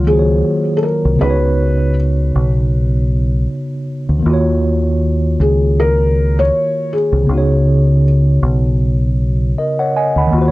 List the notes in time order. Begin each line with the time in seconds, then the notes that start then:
Already playing: C#2 D#3 F#3 A#3 F4 C#5 F#5
0.05 D#3 A#3 F4 G#4
0.11 F#4 C5
0.19 C#5
0.77 A4
0.83 A#4
1.05 C2
1.16 C#3 B3
1.21 C#2 D#4 B4
1.26 F#4 C#5
2.36 B1
4.09 D2
4.19 D#3 A#3
4.26 D#2 F4
4.30 F#4 C#5
5.40 C#2 G#4
5.80 A#4
6.39 C#5
6.93 G#4
7.12 C2
7.23 C#3 B3
7.29 C#2 D#4
7.34 F#4 C#5
8.43 B1
9.58 A#4 D#5
9.79 C#5 F#5
9.96 D#5 G#5
10.16 D2 F#5 B5
10.27 D#3 A#3
10.33 D#2 F4
10.38 F#4 C5
10.48 C#5